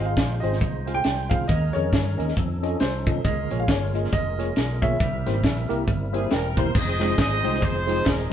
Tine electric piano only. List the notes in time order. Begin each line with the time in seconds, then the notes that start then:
0.00 C4 F4 G#4 D#5
0.43 C4 F4 G#4 C5
0.86 C4 F4 G#4 F5
1.31 C4 F4 G#4 F5
1.50 D#3
1.75 C#4 G#4 A#4 D#5
2.18 C#4 G#4 A#4 D#5
2.63 C#4 F4 A4 D#5
3.06 C#4 F4 A4 D#5
3.25 C#3
3.51 A#3 F4 G#4 C#5
3.94 A#3 F4 G#4 D#5
4.38 A#3 F4 G#4 C#5
4.82 A#3 F4 G#4 C#5
5.01 C3
5.26 A#3 E4 G4 C5
5.69 A#3 E4 G4 A#4
6.13 A#3 E4 G4 C5 E5
6.32 G5
6.57 A#3 E4 G4 C5 A#5
7.00 G#3 C4 D#4 F4 C5
7.44 G#3 C4 D#4 F4 C5
7.87 G#3 C4 D#4 F4 C5